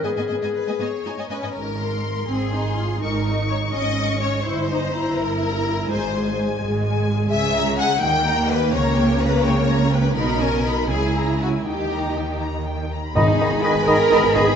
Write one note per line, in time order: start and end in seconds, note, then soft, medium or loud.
0.03 0.09 G#2 medium
0.03 0.11 B3 soft
0.03 1.30 G#4 medium
0.03 0.09 D#5 soft
0.03 0.09 G#5 soft
0.17 0.22 G#2 soft
0.17 0.23 B3 soft
0.17 0.23 D#5 soft
0.17 0.22 G#5 soft
0.29 0.35 G#2 soft
0.29 0.36 B3 soft
0.29 0.34 D#5 soft
0.29 0.36 G#5 soft
0.42 0.48 G#2 soft
0.42 0.48 B3 soft
0.42 0.48 D#5 soft
0.42 0.47 G#5 soft
0.55 0.79 B4 soft
0.67 0.72 G#2 soft
0.67 0.74 B3 soft
0.67 0.72 D#5 soft
0.67 0.73 G#5 soft
0.79 0.84 G#2 soft
0.79 0.88 B3 soft
0.79 1.30 C#5 medium
0.79 0.86 D#5 soft
0.79 0.86 G#5 soft
1.04 1.09 G#2 soft
1.04 1.14 D#4 soft
1.04 1.10 D#5 soft
1.04 1.11 G#5 soft
1.17 1.22 G#2 soft
1.17 1.23 D#5 soft
1.17 1.23 G#5 soft
1.29 1.35 G#2 soft
1.29 1.55 C#4 soft
1.29 1.55 B4 soft
1.29 1.35 D#5 soft
1.29 1.35 G#5 soft
1.41 1.48 G#2 soft
1.41 1.48 D#5 soft
1.41 1.47 G#5 soft
1.54 2.20 G#1 soft
1.54 2.20 G#2 soft
1.54 2.27 A#4 medium
1.81 2.52 C6 soft
2.27 2.93 G#1 soft
2.27 2.92 G#2 soft
2.27 2.51 C4 soft
2.27 3.00 G#4 medium
2.53 2.77 D#4 soft
2.53 3.01 C6 soft
2.77 3.01 F4 soft
3.01 3.65 G#1 medium
3.01 3.65 G#2 medium
3.01 3.72 D#4 medium
3.01 3.49 A#4 medium
3.01 3.25 C#6 soft
3.26 3.97 C#6 soft
3.49 3.57 C#5 medium
3.72 4.37 G#1 soft
3.72 4.38 G#2 medium
3.72 4.46 C#4 soft
3.72 4.20 D#5 medium
3.98 4.46 C#6 soft
4.21 4.45 C#5 medium
4.44 5.10 G1 medium
4.44 5.10 G2 medium
4.44 4.70 E4 medium
4.44 5.18 C5 medium
4.71 4.95 D#4 medium
4.71 5.41 A#5 soft
4.96 5.88 E4 medium
5.18 5.81 G1 soft
5.18 5.82 G2 medium
5.18 5.89 A#4 medium
5.44 5.90 A#5 soft
5.89 6.53 G#1 medium
5.89 6.53 G#2 medium
5.89 8.03 G#3 medium
5.89 6.37 C5 medium
5.89 6.14 G#5 soft
6.16 6.83 G#5 soft
6.61 7.23 G#1 medium
6.61 7.23 G#2 medium
6.84 7.30 G#5 medium
7.31 7.98 C#2 medium
7.31 7.98 C#3 medium
7.31 7.75 E5 medium
7.31 7.53 G#5 medium
7.54 7.78 A#5 soft
7.78 8.02 F#5 medium
7.78 8.02 G#5 medium
8.02 8.72 D#2 medium
8.02 8.72 D#3 medium
8.02 10.13 A#3 medium
8.02 8.49 G5 medium
8.02 8.24 G5 medium
8.25 8.49 A#5 soft
8.49 8.73 B4 medium
8.49 8.73 G5 soft
8.73 10.16 C#2 medium
8.73 10.17 C#3 medium
8.73 9.21 C#5 medium
8.73 8.96 A#5 medium
8.97 9.21 G5 medium
9.21 9.45 B4 medium
9.21 9.45 A#5 soft
9.44 9.93 C#5 medium
9.44 9.68 G5 medium
9.67 9.90 A#5 soft
9.91 10.17 B4 medium
9.91 10.16 G5 soft
10.15 10.89 B1 medium
10.15 10.90 B2 medium
10.15 10.41 D#4 medium
10.15 10.89 A#4 medium
10.15 10.38 B5 soft
10.40 10.66 C#4 medium
10.40 10.65 G#5 soft
10.64 10.90 D#4 soft
10.64 10.90 B5 soft
10.90 11.65 C#2 soft
10.90 11.66 C#3 medium
10.90 11.66 E4 medium
10.90 11.39 G#4 medium
10.90 11.13 G#5 soft
11.15 11.41 A#5 soft
11.41 11.49 F#4 medium
11.41 11.66 G#5 soft
11.65 12.93 D#2 soft
11.65 12.93 D#3 medium
11.65 12.79 D#4 soft
11.65 12.40 G4 medium
11.65 11.90 G5 soft
11.91 12.16 A#5 soft
12.17 12.42 G5 soft
12.42 12.66 A#5 soft
12.67 12.90 G5 soft
12.92 13.16 A#5 soft
13.15 13.20 G#1 medium
13.15 13.84 G#2 medium
13.15 13.26 D#3 medium
13.15 14.56 B3 medium
13.15 13.60 D#4 medium
13.15 13.21 D#4 medium
13.15 14.54 G#4 medium
13.15 13.26 D#5 medium
13.15 13.28 D#5 medium
13.15 14.55 G#5 medium
13.15 14.56 B5 medium
13.15 13.23 B5 medium
13.27 13.32 G#1 soft
13.27 13.32 D#4 soft
13.39 13.45 G#1 soft
13.39 13.51 D#3 soft
13.39 13.45 D#4 soft
13.39 13.50 D#5 medium
13.39 13.51 D#5 soft
13.39 13.47 B5 soft
13.51 13.56 G#1 medium
13.51 13.56 D#4 medium
13.63 13.75 D#3 medium
13.63 13.87 B4 medium
13.63 13.74 D#5 medium
13.63 13.76 D#5 medium
13.63 13.70 B5 soft
13.74 13.80 G#1 medium
13.74 13.79 D#4 soft
13.87 13.92 G#1 medium
13.87 13.98 D#3 medium
13.87 13.91 D#4 medium
13.87 14.34 A#4 medium
13.87 13.98 D#5 medium
13.87 13.93 B5 medium
14.10 14.16 G#1 medium
14.10 14.22 D#3 soft
14.10 14.16 D#4 medium
14.10 14.21 D#5 medium
14.10 14.22 D#5 soft
14.10 14.18 B5 medium
14.23 14.28 G#1 medium
14.23 14.27 D#4 medium
14.34 14.40 G#1 medium
14.34 14.45 D#3 medium
14.34 14.39 D#4 medium
14.34 14.56 G#4 medium
14.34 14.45 D#5 medium
14.34 14.46 D#5 medium
14.34 14.41 B5 medium
14.46 14.51 G#1 medium
14.46 14.51 D#4 medium